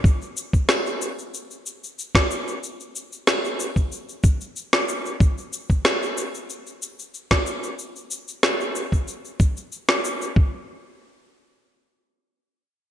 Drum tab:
SH |xxxxxxxxxxxxxxxx|xxxxxxxxxxxxxxxx|xxxxxxxxxxxxxxxx|xxxxxxxxxxxxxxxx|
SD |----o--------o--|----o--------o--|----o--------o--|----o--------o--|
BD |o--o---------o--|-------o--o-----|o--o---------o--|-------o--o-----|

SH |----------------|
SD |----------------|
BD |o---------------|